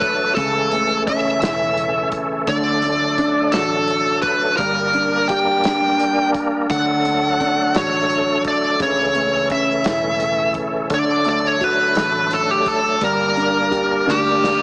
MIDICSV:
0, 0, Header, 1, 6, 480
1, 0, Start_track
1, 0, Key_signature, 2, "major"
1, 0, Tempo, 702576
1, 251, Time_signature, 6, 3, 24, 8
1, 9990, End_track
2, 0, Start_track
2, 0, Title_t, "Lead electric guitar"
2, 0, Program_c, 0, 29
2, 0, Note_on_c, 0, 71, 77
2, 229, Note_off_c, 0, 71, 0
2, 237, Note_on_c, 0, 69, 95
2, 697, Note_off_c, 0, 69, 0
2, 732, Note_on_c, 0, 76, 95
2, 1425, Note_off_c, 0, 76, 0
2, 1698, Note_on_c, 0, 74, 87
2, 2406, Note_on_c, 0, 69, 67
2, 2437, Note_off_c, 0, 74, 0
2, 2862, Note_off_c, 0, 69, 0
2, 2884, Note_on_c, 0, 71, 78
2, 3118, Note_off_c, 0, 71, 0
2, 3120, Note_on_c, 0, 70, 94
2, 3607, Note_on_c, 0, 79, 103
2, 3622, Note_off_c, 0, 70, 0
2, 4303, Note_off_c, 0, 79, 0
2, 4582, Note_on_c, 0, 78, 98
2, 5309, Note_on_c, 0, 73, 71
2, 5319, Note_off_c, 0, 78, 0
2, 5754, Note_off_c, 0, 73, 0
2, 5793, Note_on_c, 0, 74, 69
2, 6007, Note_off_c, 0, 74, 0
2, 6029, Note_on_c, 0, 73, 88
2, 6474, Note_off_c, 0, 73, 0
2, 6503, Note_on_c, 0, 76, 88
2, 7190, Note_off_c, 0, 76, 0
2, 7474, Note_on_c, 0, 74, 94
2, 7705, Note_off_c, 0, 74, 0
2, 7713, Note_on_c, 0, 74, 99
2, 7837, Note_off_c, 0, 74, 0
2, 7837, Note_on_c, 0, 73, 99
2, 7951, Note_off_c, 0, 73, 0
2, 7951, Note_on_c, 0, 71, 91
2, 8431, Note_on_c, 0, 69, 88
2, 8436, Note_off_c, 0, 71, 0
2, 8545, Note_off_c, 0, 69, 0
2, 8545, Note_on_c, 0, 67, 73
2, 8662, Note_off_c, 0, 67, 0
2, 8662, Note_on_c, 0, 69, 77
2, 8904, Note_off_c, 0, 69, 0
2, 8908, Note_on_c, 0, 70, 84
2, 9639, Note_on_c, 0, 67, 75
2, 9990, Note_off_c, 0, 67, 0
2, 9990, Note_off_c, 0, 70, 0
2, 9990, End_track
3, 0, Start_track
3, 0, Title_t, "Grand piano"
3, 0, Program_c, 1, 0
3, 0, Control_c, 1, 64, 127
3, 0, Note_on_c, 1, 50, 72
3, 0, Note_on_c, 1, 57, 61
3, 0, Note_on_c, 1, 66, 55
3, 227, Note_off_c, 1, 50, 0
3, 230, Note_off_c, 1, 66, 0
3, 233, Note_off_c, 1, 57, 0
3, 253, Note_on_c, 1, 49, 65
3, 260, Control_c, 1, 64, 0
3, 385, Control_c, 1, 64, 127
3, 498, Note_on_c, 1, 57, 44
3, 738, Note_on_c, 1, 61, 55
3, 971, Note_on_c, 1, 64, 53
3, 1428, Note_off_c, 1, 57, 0
3, 1666, Note_off_c, 1, 49, 0
3, 1668, Note_off_c, 1, 61, 0
3, 1670, Note_off_c, 1, 64, 0
3, 1693, Note_on_c, 1, 50, 75
3, 1703, Control_c, 1, 64, 0
3, 1818, Control_c, 1, 64, 127
3, 1937, Note_on_c, 1, 57, 50
3, 2176, Note_on_c, 1, 62, 59
3, 2421, Note_on_c, 1, 66, 60
3, 2868, Note_off_c, 1, 57, 0
3, 3107, Note_off_c, 1, 50, 0
3, 3108, Note_off_c, 1, 62, 0
3, 3116, Note_off_c, 1, 66, 0
3, 3136, Note_on_c, 1, 55, 66
3, 3142, Control_c, 1, 64, 0
3, 3242, Control_c, 1, 64, 127
3, 3375, Note_on_c, 1, 62, 43
3, 3619, Note_on_c, 1, 67, 61
3, 3851, Note_off_c, 1, 62, 0
3, 3861, Note_on_c, 1, 62, 52
3, 4548, Note_off_c, 1, 55, 0
3, 4549, Note_off_c, 1, 67, 0
3, 4556, Note_off_c, 1, 62, 0
3, 4580, Note_on_c, 1, 50, 68
3, 4583, Control_c, 1, 64, 0
3, 4716, Control_c, 1, 64, 127
3, 4818, Note_on_c, 1, 57, 45
3, 5059, Note_on_c, 1, 62, 54
3, 5298, Note_on_c, 1, 66, 60
3, 5748, Note_off_c, 1, 57, 0
3, 5989, Note_off_c, 1, 50, 0
3, 5989, Note_off_c, 1, 62, 0
3, 5994, Note_off_c, 1, 66, 0
3, 6011, Note_on_c, 1, 49, 69
3, 6023, Control_c, 1, 64, 0
3, 6161, Control_c, 1, 64, 127
3, 6254, Note_on_c, 1, 57, 48
3, 6493, Note_on_c, 1, 61, 58
3, 6731, Note_on_c, 1, 64, 58
3, 7186, Note_off_c, 1, 57, 0
3, 7424, Note_off_c, 1, 49, 0
3, 7425, Note_off_c, 1, 61, 0
3, 7430, Note_off_c, 1, 64, 0
3, 7450, Note_on_c, 1, 50, 73
3, 7461, Control_c, 1, 64, 0
3, 7577, Control_c, 1, 64, 127
3, 7690, Note_on_c, 1, 57, 48
3, 7931, Note_on_c, 1, 66, 58
3, 8161, Note_off_c, 1, 57, 0
3, 8172, Note_on_c, 1, 57, 65
3, 8863, Note_off_c, 1, 50, 0
3, 8864, Note_off_c, 1, 66, 0
3, 8870, Note_off_c, 1, 57, 0
3, 8896, Note_on_c, 1, 55, 68
3, 8899, Control_c, 1, 64, 0
3, 9009, Control_c, 1, 64, 127
3, 9133, Note_on_c, 1, 62, 41
3, 9367, Note_on_c, 1, 67, 60
3, 9600, Note_off_c, 1, 62, 0
3, 9610, Note_on_c, 1, 62, 54
3, 9990, Note_off_c, 1, 55, 0
3, 9990, Note_off_c, 1, 62, 0
3, 9990, Note_off_c, 1, 67, 0
3, 9990, End_track
4, 0, Start_track
4, 0, Title_t, "Tonewheel organ"
4, 0, Program_c, 2, 16
4, 0, Note_on_c, 2, 54, 67
4, 0, Note_on_c, 2, 57, 59
4, 0, Note_on_c, 2, 62, 59
4, 0, Note_on_c, 2, 69, 75
4, 238, Note_off_c, 2, 54, 0
4, 239, Note_off_c, 2, 62, 0
4, 245, Note_on_c, 2, 52, 71
4, 247, Note_on_c, 2, 61, 63
4, 1675, Note_off_c, 2, 52, 0
4, 1676, Note_off_c, 2, 61, 0
4, 1685, Note_on_c, 2, 62, 65
4, 1686, Note_on_c, 2, 54, 71
4, 3108, Note_off_c, 2, 57, 0
4, 3108, Note_off_c, 2, 69, 0
4, 3116, Note_off_c, 2, 54, 0
4, 3130, Note_on_c, 2, 55, 69
4, 3132, Note_on_c, 2, 58, 65
4, 3133, Note_on_c, 2, 70, 75
4, 4557, Note_off_c, 2, 55, 0
4, 4559, Note_off_c, 2, 58, 0
4, 4559, Note_off_c, 2, 70, 0
4, 4573, Note_on_c, 2, 54, 59
4, 4574, Note_on_c, 2, 57, 62
4, 4575, Note_on_c, 2, 69, 76
4, 5982, Note_off_c, 2, 62, 0
4, 5999, Note_off_c, 2, 54, 0
4, 6014, Note_on_c, 2, 52, 71
4, 6014, Note_on_c, 2, 61, 64
4, 7425, Note_off_c, 2, 57, 0
4, 7438, Note_off_c, 2, 61, 0
4, 7439, Note_off_c, 2, 52, 0
4, 7448, Note_on_c, 2, 54, 67
4, 7448, Note_on_c, 2, 62, 65
4, 7449, Note_on_c, 2, 57, 65
4, 8865, Note_off_c, 2, 69, 0
4, 8875, Note_off_c, 2, 54, 0
4, 8875, Note_off_c, 2, 57, 0
4, 8894, Note_on_c, 2, 55, 61
4, 8896, Note_on_c, 2, 58, 67
4, 8896, Note_on_c, 2, 70, 74
4, 9990, Note_off_c, 2, 55, 0
4, 9990, Note_off_c, 2, 58, 0
4, 9990, Note_off_c, 2, 62, 0
4, 9990, Note_off_c, 2, 70, 0
4, 9990, End_track
5, 0, Start_track
5, 0, Title_t, "Fingered electric bass"
5, 0, Program_c, 3, 33
5, 0, Note_on_c, 3, 33, 78
5, 225, Note_off_c, 3, 33, 0
5, 251, Note_on_c, 3, 37, 94
5, 944, Note_off_c, 3, 37, 0
5, 967, Note_on_c, 3, 28, 89
5, 1663, Note_off_c, 3, 28, 0
5, 1693, Note_on_c, 3, 38, 109
5, 2386, Note_off_c, 3, 38, 0
5, 2414, Note_on_c, 3, 33, 86
5, 3106, Note_off_c, 3, 33, 0
5, 3133, Note_on_c, 3, 31, 104
5, 3854, Note_off_c, 3, 31, 0
5, 3854, Note_on_c, 3, 38, 89
5, 4546, Note_off_c, 3, 38, 0
5, 4574, Note_on_c, 3, 38, 92
5, 5294, Note_on_c, 3, 33, 84
5, 5304, Note_off_c, 3, 38, 0
5, 5986, Note_off_c, 3, 33, 0
5, 6012, Note_on_c, 3, 37, 107
5, 6705, Note_off_c, 3, 37, 0
5, 6731, Note_on_c, 3, 28, 82
5, 7447, Note_off_c, 3, 28, 0
5, 7447, Note_on_c, 3, 38, 105
5, 8142, Note_off_c, 3, 38, 0
5, 8176, Note_on_c, 3, 33, 94
5, 8866, Note_off_c, 3, 33, 0
5, 8889, Note_on_c, 3, 31, 100
5, 9583, Note_off_c, 3, 31, 0
5, 9618, Note_on_c, 3, 38, 94
5, 9990, Note_off_c, 3, 38, 0
5, 9990, End_track
6, 0, Start_track
6, 0, Title_t, "Drums"
6, 9, Note_on_c, 9, 42, 54
6, 11, Note_on_c, 9, 36, 86
6, 77, Note_off_c, 9, 42, 0
6, 79, Note_off_c, 9, 36, 0
6, 249, Note_on_c, 9, 42, 84
6, 251, Note_on_c, 9, 36, 106
6, 317, Note_off_c, 9, 42, 0
6, 319, Note_off_c, 9, 36, 0
6, 487, Note_on_c, 9, 42, 47
6, 556, Note_off_c, 9, 42, 0
6, 733, Note_on_c, 9, 36, 81
6, 734, Note_on_c, 9, 42, 50
6, 801, Note_off_c, 9, 36, 0
6, 802, Note_off_c, 9, 42, 0
6, 969, Note_on_c, 9, 42, 81
6, 980, Note_on_c, 9, 38, 104
6, 1037, Note_off_c, 9, 42, 0
6, 1048, Note_off_c, 9, 38, 0
6, 1211, Note_on_c, 9, 42, 55
6, 1279, Note_off_c, 9, 42, 0
6, 1446, Note_on_c, 9, 42, 53
6, 1449, Note_on_c, 9, 36, 81
6, 1514, Note_off_c, 9, 42, 0
6, 1517, Note_off_c, 9, 36, 0
6, 1689, Note_on_c, 9, 42, 90
6, 1691, Note_on_c, 9, 36, 104
6, 1757, Note_off_c, 9, 42, 0
6, 1759, Note_off_c, 9, 36, 0
6, 1926, Note_on_c, 9, 42, 52
6, 1995, Note_off_c, 9, 42, 0
6, 2173, Note_on_c, 9, 36, 73
6, 2174, Note_on_c, 9, 42, 52
6, 2241, Note_off_c, 9, 36, 0
6, 2242, Note_off_c, 9, 42, 0
6, 2406, Note_on_c, 9, 42, 81
6, 2417, Note_on_c, 9, 38, 99
6, 2474, Note_off_c, 9, 42, 0
6, 2485, Note_off_c, 9, 38, 0
6, 2648, Note_on_c, 9, 42, 53
6, 2716, Note_off_c, 9, 42, 0
6, 2884, Note_on_c, 9, 42, 46
6, 2890, Note_on_c, 9, 36, 79
6, 2952, Note_off_c, 9, 42, 0
6, 2958, Note_off_c, 9, 36, 0
6, 3128, Note_on_c, 9, 42, 85
6, 3132, Note_on_c, 9, 36, 103
6, 3196, Note_off_c, 9, 42, 0
6, 3200, Note_off_c, 9, 36, 0
6, 3370, Note_on_c, 9, 42, 46
6, 3438, Note_off_c, 9, 42, 0
6, 3613, Note_on_c, 9, 42, 49
6, 3615, Note_on_c, 9, 36, 77
6, 3682, Note_off_c, 9, 42, 0
6, 3684, Note_off_c, 9, 36, 0
6, 3851, Note_on_c, 9, 42, 87
6, 3862, Note_on_c, 9, 38, 110
6, 3919, Note_off_c, 9, 42, 0
6, 3930, Note_off_c, 9, 38, 0
6, 4096, Note_on_c, 9, 42, 57
6, 4165, Note_off_c, 9, 42, 0
6, 4334, Note_on_c, 9, 36, 77
6, 4334, Note_on_c, 9, 42, 47
6, 4402, Note_off_c, 9, 42, 0
6, 4403, Note_off_c, 9, 36, 0
6, 4576, Note_on_c, 9, 36, 109
6, 4576, Note_on_c, 9, 42, 84
6, 4644, Note_off_c, 9, 36, 0
6, 4644, Note_off_c, 9, 42, 0
6, 4815, Note_on_c, 9, 42, 51
6, 4884, Note_off_c, 9, 42, 0
6, 5057, Note_on_c, 9, 36, 73
6, 5060, Note_on_c, 9, 42, 50
6, 5125, Note_off_c, 9, 36, 0
6, 5128, Note_off_c, 9, 42, 0
6, 5292, Note_on_c, 9, 42, 80
6, 5303, Note_on_c, 9, 38, 109
6, 5360, Note_off_c, 9, 42, 0
6, 5371, Note_off_c, 9, 38, 0
6, 5532, Note_on_c, 9, 42, 52
6, 5600, Note_off_c, 9, 42, 0
6, 5769, Note_on_c, 9, 42, 51
6, 5772, Note_on_c, 9, 36, 81
6, 5837, Note_off_c, 9, 42, 0
6, 5840, Note_off_c, 9, 36, 0
6, 6012, Note_on_c, 9, 36, 109
6, 6012, Note_on_c, 9, 42, 79
6, 6080, Note_off_c, 9, 36, 0
6, 6080, Note_off_c, 9, 42, 0
6, 6249, Note_on_c, 9, 42, 48
6, 6317, Note_off_c, 9, 42, 0
6, 6488, Note_on_c, 9, 42, 50
6, 6492, Note_on_c, 9, 36, 74
6, 6556, Note_off_c, 9, 42, 0
6, 6560, Note_off_c, 9, 36, 0
6, 6724, Note_on_c, 9, 42, 85
6, 6735, Note_on_c, 9, 38, 113
6, 6792, Note_off_c, 9, 42, 0
6, 6804, Note_off_c, 9, 38, 0
6, 6967, Note_on_c, 9, 42, 54
6, 7035, Note_off_c, 9, 42, 0
6, 7201, Note_on_c, 9, 42, 45
6, 7208, Note_on_c, 9, 36, 68
6, 7269, Note_off_c, 9, 42, 0
6, 7276, Note_off_c, 9, 36, 0
6, 7446, Note_on_c, 9, 42, 91
6, 7449, Note_on_c, 9, 36, 103
6, 7514, Note_off_c, 9, 42, 0
6, 7517, Note_off_c, 9, 36, 0
6, 7682, Note_on_c, 9, 42, 43
6, 7750, Note_off_c, 9, 42, 0
6, 7931, Note_on_c, 9, 42, 54
6, 7932, Note_on_c, 9, 36, 72
6, 7999, Note_off_c, 9, 42, 0
6, 8000, Note_off_c, 9, 36, 0
6, 8166, Note_on_c, 9, 42, 83
6, 8178, Note_on_c, 9, 38, 115
6, 8235, Note_off_c, 9, 42, 0
6, 8246, Note_off_c, 9, 38, 0
6, 8408, Note_on_c, 9, 42, 54
6, 8477, Note_off_c, 9, 42, 0
6, 8649, Note_on_c, 9, 42, 52
6, 8650, Note_on_c, 9, 36, 81
6, 8717, Note_off_c, 9, 42, 0
6, 8719, Note_off_c, 9, 36, 0
6, 8890, Note_on_c, 9, 42, 85
6, 8892, Note_on_c, 9, 36, 92
6, 8958, Note_off_c, 9, 42, 0
6, 8960, Note_off_c, 9, 36, 0
6, 9128, Note_on_c, 9, 42, 46
6, 9196, Note_off_c, 9, 42, 0
6, 9373, Note_on_c, 9, 36, 68
6, 9374, Note_on_c, 9, 42, 48
6, 9441, Note_off_c, 9, 36, 0
6, 9443, Note_off_c, 9, 42, 0
6, 9625, Note_on_c, 9, 38, 57
6, 9693, Note_off_c, 9, 38, 0
6, 9865, Note_on_c, 9, 38, 76
6, 9934, Note_off_c, 9, 38, 0
6, 9990, End_track
0, 0, End_of_file